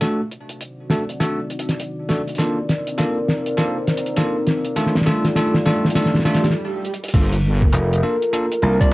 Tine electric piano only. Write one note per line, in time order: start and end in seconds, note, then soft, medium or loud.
0.01 0.20 A3 medium
0.01 0.20 D4 medium
0.01 0.20 F#4 medium
0.01 0.20 A4 loud
0.90 1.03 A3 medium
0.90 1.02 D4 medium
0.90 1.03 F#4 medium
0.90 1.02 A4 loud
1.20 1.39 A3 medium
1.20 1.39 D4 medium
1.20 1.39 F#4 medium
1.20 1.39 A4 loud
2.09 2.21 A3 medium
2.09 2.21 D4 medium
2.09 2.21 F#4 medium
2.09 2.21 A4 medium
2.38 2.58 A#3 medium
2.38 2.58 D4 medium
2.38 2.58 F4 medium
2.38 2.58 A4 loud
2.98 3.17 A#3 medium
2.98 3.17 D4 medium
2.98 3.17 F4 medium
2.98 3.17 A4 loud
3.57 3.77 A#3 loud
3.57 3.77 D4 medium
3.57 3.77 F4 medium
3.57 3.77 A4 loud
4.17 4.36 A#3 loud
4.17 4.36 D4 medium
4.17 4.36 F4 medium
4.17 4.36 A4 loud
4.76 4.95 A3 medium
4.76 4.96 D4 medium
4.76 4.95 F4 medium
4.76 4.95 A4 loud
5.06 5.25 A3 loud
5.06 5.25 D4 medium
5.06 5.25 F4 medium
5.06 5.25 A4 loud
5.36 5.55 A3 loud
5.36 5.55 D4 medium
5.36 5.55 F4 medium
5.36 5.55 A4 loud
5.65 5.85 A3 loud
5.65 5.85 D4 medium
5.65 5.85 F4 medium
5.65 5.85 A4 loud
5.95 6.14 A3 loud
5.95 6.14 D4 medium
5.95 6.14 F4 medium
5.95 6.14 A4 loud
6.25 6.44 A3 loud
6.25 6.44 D4 medium
6.25 6.44 F4 medium
6.25 6.44 A4 loud
7.14 7.33 A#3 medium
7.14 7.33 D4 medium
7.14 7.33 F4 medium
7.14 7.33 A4 loud
8.03 8.15 A#3 medium
8.03 8.15 D4 medium
8.03 8.15 F4 medium
8.03 8.15 A4 loud
8.33 8.45 A#3 loud
8.33 8.45 D4 medium
8.33 8.45 F4 medium
8.33 8.45 A4 loud
8.62 8.77 A#3 medium
8.62 8.77 D4 medium
8.62 8.77 F4 medium
8.62 8.77 A#4 medium
8.81 8.93 A#3 medium
8.81 8.93 D4 medium
8.81 8.93 F4 medium
8.81 8.93 G4 loud